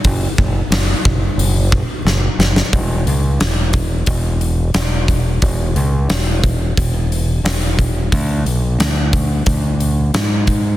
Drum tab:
HH |o---o---o-------|o-o-o-o-o-o-o-o-|o-o-o-o-o-o-o-o-|o-o-o-o-o-o-o-o-|
SD |----o-------o-oo|----o-------o---|----o-------o---|----o-------o---|
BD |o-o---o---o-----|o-----o-o-----o-|o-----o-o-----o-|o-----o-o-----o-|